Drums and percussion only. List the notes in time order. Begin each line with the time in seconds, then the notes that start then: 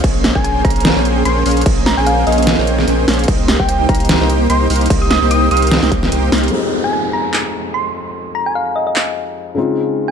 0.04 kick, closed hi-hat, crash
0.24 snare, closed hi-hat
0.35 kick
0.45 closed hi-hat
0.65 kick, closed hi-hat
0.70 closed hi-hat
0.76 closed hi-hat
0.80 closed hi-hat
0.85 snare, closed hi-hat
1.05 closed hi-hat
1.25 closed hi-hat
1.46 open hi-hat
1.51 closed hi-hat
1.57 closed hi-hat
1.61 closed hi-hat
1.66 kick, closed hi-hat, crash
1.86 snare, closed hi-hat
2.06 closed hi-hat
2.27 closed hi-hat
2.32 closed hi-hat
2.38 closed hi-hat
2.43 closed hi-hat
2.47 snare, closed hi-hat
2.67 closed hi-hat
2.79 snare
2.88 closed hi-hat
3.08 snare, open hi-hat
3.13 closed hi-hat
3.19 closed hi-hat
3.24 closed hi-hat
3.28 kick, closed hi-hat, crash
3.48 snare, closed hi-hat
3.60 kick
3.69 closed hi-hat
3.89 kick, closed hi-hat
3.95 closed hi-hat
4.00 closed hi-hat
4.05 closed hi-hat
4.09 snare, closed hi-hat
4.30 closed hi-hat
4.50 closed hi-hat
4.70 open hi-hat
4.76 closed hi-hat
4.81 closed hi-hat
4.86 closed hi-hat
4.90 kick, closed hi-hat, crash
5.11 snare, closed hi-hat
5.31 closed hi-hat
5.51 closed hi-hat
5.57 closed hi-hat
5.62 closed hi-hat
5.67 closed hi-hat
5.72 snare, closed hi-hat
5.83 snare
5.92 kick, closed hi-hat
6.03 snare
6.12 closed hi-hat
6.32 snare, open hi-hat
6.38 closed hi-hat
6.43 closed hi-hat
6.48 closed hi-hat
7.34 clap
8.96 clap